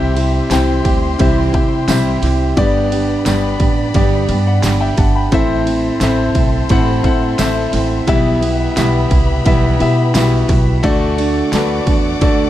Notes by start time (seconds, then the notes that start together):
Already playing: C2 C3 E3 G3 C4 E4 G4 C5 E5 C6
0.16 G3 E4 G4, ride
0.50 C2 E3 G3 C4 E4 G4 C5 G5, snare, ride, tambourine
0.84 D2 G3 E4 G4, kick, ride
1.18 C2 C3 E3 G3 C4 E4 G4 C5 E5, kick, ride
1.53 C3 G3 C4 E4 G4 C5 G5, kick, ride
1.88 C2 E3 G3 C4 E4 G4 C5 E5, snare, ride, tambourine
2.22 C2 G3 E4 G4, snare, open hi-hat, ride
2.57 G1 G2 D3 G3 B3 D4 G4 B4 D5 B5, kick, ride
2.91 G3 B3 D4 G4, ride
3.25 G1 G3 B3 D4 G4 B4 D5, snare, ride, tambourine
3.60 A1 G3 B3 D4 G4, kick, ride
3.94 G1 G2 D3 G3 B3 D4 G4 B4 D5, kick, ride
4.29 G2 G3 B3 D4 G4, ride
4.46 D5 F#5
4.63 G1 G3 B3 D4 G4, snare, ride, tambourine
4.81 E5 G5
4.97 G1 G3 B3 D4 G4 F#5 A5, kick, snare, open hi-hat, ride
5.15 G5 B5
5.31 A1 A2 E3 A3 C4 E4 A4 C5 E5 C6, kick, ride
5.66 A3 C4 E4, ride
6.00 A1 E3 A3 C4 E4 A4 C5 E5, snare, ride, tambourine
6.35 B1 A3 C4 E4, kick, ride
6.69 A1 A2 E3 A3 C4 E4 A4 C5 F#5, kick, ride
7.03 A2 A3 C4 E4 A4 C5 F#5, kick, ride
7.38 A1 E3 A3 C4 E4 A4 C5 E5, snare, ride, tambourine
7.73 A1 A3 C4 E4, snare, open hi-hat, ride
8.07 B1 B2 E3 G3 B3 E4 G4 B4 E5 B5, kick, ride
8.41 G3 B3 E4, ride
8.76 B1 E3 G3 B3 E4 G4 B4 E5, snare, ride, tambourine
9.11 C2 G3 B3 E4, kick, ride
9.45 B1 B2 E3 G3 B3 E4 G4 B4 E5, kick, ride
9.79 B2 G3 B3 E4 G4 B4 E5, ride
10.13 B1 E3 G3 B3 E4 F#4 B4 E5, snare, ride, tambourine
10.22 G4
10.48 B1 G3 B3 E4, kick, snare, open hi-hat, ride
10.83 D2 D3 A3 D4 F#4 A4 D5 F#5 D6, kick, ride
11.17 A3 D4 F#4, ride
11.51 D2 D3 A3 D4 F#4 A4 B4, snare, ride, tambourine
11.86 E2 A3 D4 F#4, kick, ride
12.20 D2 D3 A3 D4 F#4 A4 D5, kick, ride